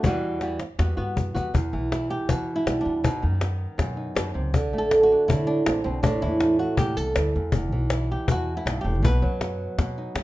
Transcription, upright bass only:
0.03 0.60 E2 medium
0.79 0.93 E2 medium
0.97 1.14 G2 medium
1.17 1.33 F#2 medium
1.35 1.52 E2 medium
1.54 1.75 E2 medium
1.73 2.15 B1 medium
2.29 2.58 E3 medium
2.66 2.80 B1 medium
2.86 3.04 F#2 medium
3.04 3.25 B1 medium
3.23 3.65 F#2 medium
3.79 4.07 B2 medium
4.16 4.30 F#2 medium
4.35 4.54 C#2 medium
4.54 4.72 D2 medium
4.72 5.15 A1 medium
5.29 5.57 D3 medium
5.67 5.81 A1 medium
5.86 6.03 B1 medium
6.03 6.24 A1 medium
6.23 6.65 E2 medium
6.79 6.93 A2 medium
6.97 7.14 C2 medium
7.16 7.33 D2 medium
7.35 7.55 E2 medium
7.54 7.72 E1 medium
7.72 8.15 B1 medium
8.29 8.57 E2 medium
8.66 8.80 B1 medium
8.84 9.03 E1 medium
9.03 9.24 B1 medium
9.22 9.65 F#2 medium
9.78 10.07 B2 medium
10.15 10.23 F#2 medium

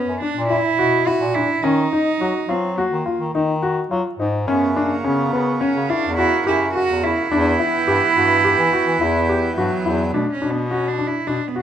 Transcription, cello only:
0.00 0.20 C#4 medium
0.21 0.47 D4 medium
0.48 1.09 E4 loud
1.07 1.36 F#4 loud
1.34 1.65 E4 medium
1.64 2.52 D#4 medium
2.50 2.80 C4 medium
2.79 3.35 A#3 medium
4.48 4.78 B3 medium
4.77 5.06 A#3 medium
5.04 5.63 B3 medium
5.61 5.91 C#4 medium
5.90 6.16 D4 medium
6.17 6.44 E4 loud
6.47 6.73 E4 medium
6.74 7.05 F#4 loud
7.04 9.56 E4 loud
9.57 10.15 F#3 loud
10.13 10.32 A3 medium
10.32 10.52 C#4 medium
10.50 10.69 B3 medium
10.70 10.89 C#4 medium
10.88 11.08 D4 medium
11.07 11.29 E4 medium
11.27 11.49 D4 medium
11.47 11.60 B3 medium

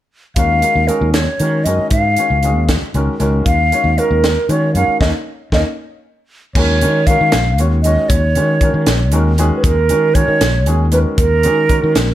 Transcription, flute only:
0.36 0.89 F5 medium
0.88 1.13 A#4 medium
1.14 1.66 C#5 medium
1.64 1.91 D#5 medium
1.91 2.65 F5 medium
3.46 4.00 F5 medium
3.98 4.52 A#4 medium
4.50 4.75 C#5 medium
4.75 4.99 F5 medium
5.01 5.09 D#5 medium
5.53 5.61 D#5 medium
6.55 7.08 C#5 medium
7.07 7.59 F5 medium
7.83 8.11 D#5 medium
8.09 9.12 C#5 loud
9.56 9.65 B4 medium
9.63 10.16 A#4 medium
10.14 10.66 C#5 loud
10.93 10.99 B4 medium
11.17 12.14 A#4 loud

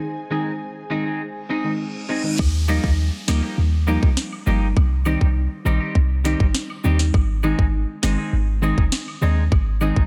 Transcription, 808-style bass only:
2.39 2.79 D#2 loud
2.84 3.10 D#2 medium
3.28 3.41 D2 medium
3.58 3.98 D#2 medium
4.03 4.16 C2 medium
4.47 4.74 G1 medium
4.77 5.17 C2 loud
5.21 5.48 C2 loud
5.66 5.79 A#1 medium
5.95 6.35 C2 medium
6.40 6.53 G#1 loud
6.84 7.11 D#2 medium
7.14 7.54 G#1 loud
7.59 7.85 G#1 medium
8.03 8.17 G1 medium
8.33 8.73 G#1 medium
8.78 8.91 F1 medium
9.22 9.49 D#2 medium
9.52 9.92 G#1 loud
9.96 10.07 G#1 loud

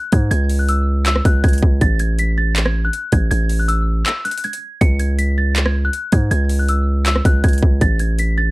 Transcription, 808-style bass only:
0.13 0.31 G#2 loud
0.31 1.21 C#2 loud
1.25 1.43 C#2 loud
1.44 1.62 C#2 loud
1.63 1.81 C#2 loud
1.81 2.90 A1 loud
3.13 3.31 A1 loud
3.31 4.03 A1 loud
4.81 5.90 C#2 loud
6.13 6.31 G#2 loud
6.31 7.21 C#2 loud
7.25 7.43 C#2 loud
7.44 7.62 C#2 loud
7.63 7.81 C#2 loud
7.81 8.51 A1 loud

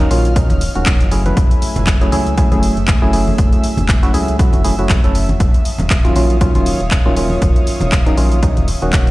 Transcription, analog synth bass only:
0.11 0.52 A#1 medium
0.50 0.69 D#1 loud
0.75 1.02 D#1 medium
1.01 1.33 F#1 loud
1.37 1.48 F#1 loud
1.76 2.08 F#1 medium
2.12 2.53 C#2 medium
2.52 2.70 F#1 loud
2.77 2.96 F#1 loud
3.02 3.34 F#1 loud
3.38 3.49 F#1 medium
3.78 4.10 F#1 medium
4.14 4.55 C#2 medium
4.53 4.72 F#1 loud
4.79 4.97 F#1 medium
5.04 5.36 F#1 loud
5.40 5.51 D#1 loud
5.80 6.12 D#1 loud
6.16 6.57 A#1 medium
6.55 6.74 D#1 loud
6.80 6.99 D#1 loud
7.06 7.38 D#1 loud
7.42 7.53 D#1 loud
7.81 8.13 D#1 medium
8.17 8.58 A#1 medium
8.57 8.75 D#1 loud
8.82 9.09 D#1 loud
9.07 9.11 F#1 loud

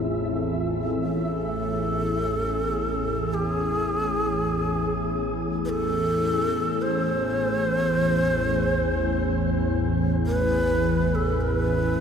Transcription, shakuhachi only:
1.04 3.35 A4 medium
3.34 3.47 G4 medium
3.47 5.38 G#4 medium
5.65 5.70 B4 medium
5.69 6.83 A4 loud
6.82 9.70 C5 medium
10.27 11.16 B4 medium
11.15 11.43 A4 medium
11.41 11.58 A#4 medium
11.58 12.00 B4 medium

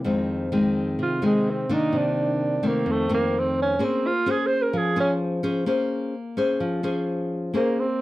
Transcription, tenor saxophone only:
1.02 1.23 F4 medium
1.26 1.51 G#3 medium
1.50 1.75 C4 medium
1.74 1.99 D#4 medium
1.97 2.68 D4 medium
2.66 2.93 A#3 medium
2.92 3.12 A3 medium
3.14 3.41 A#3 medium
3.39 3.59 C4 medium
3.62 3.86 C#4 medium
3.85 4.08 C4 medium
4.07 4.32 F4 medium
4.31 4.48 G#4 medium
4.47 4.64 C5 loud
4.62 4.79 A#4 medium
4.77 4.99 G#4 medium
5.00 5.13 C#4 medium
7.56 7.81 A#3 medium
7.79 8.02 C4 medium

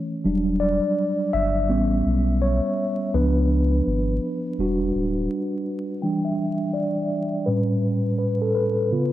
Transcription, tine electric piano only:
0.00 0.20 E3 medium
0.00 0.20 A3 soft
0.00 0.21 C#4 medium
0.24 1.65 F#3 medium
0.24 1.65 G3 soft
0.24 1.65 D4 medium
0.60 1.34 D5 medium
1.33 2.44 E5 loud
1.69 3.09 G3 medium
1.69 3.10 B3 soft
1.69 3.10 C#4 medium
2.42 3.16 C#5 medium
3.14 4.54 F3 soft
3.14 4.54 B3 soft
3.14 4.55 D4 medium
3.14 5.26 B4 medium
4.59 5.10 G3 soft
4.59 5.11 D4 soft
4.59 5.11 F#4 medium
6.02 7.07 E3 soft
6.02 7.07 G3 soft
6.02 7.08 D4 medium
6.02 6.26 G5 medium
6.25 6.71 E5 medium
6.73 7.42 D5 medium
7.46 7.99 A2 soft
7.46 7.99 G3 soft
7.46 7.99 C#4 soft
7.46 8.17 B4 medium
8.18 8.43 B4 medium
8.42 8.54 A4 medium
8.55 9.12 B4 medium
8.92 9.12 C#3 soft
8.92 9.12 B3 soft
8.92 9.12 F4 medium

